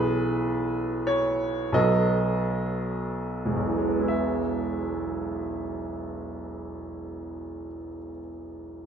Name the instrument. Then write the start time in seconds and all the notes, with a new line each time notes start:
upright piano
Already playing: B1 E3 B3 G#4 B4
1.07 C#5
1.72 B1 F#3 B3 A4 D#5
3.46 E1
3.56 B1
3.67 E3
3.78 G#3
3.89 B3
4.00 E4
4.08 E5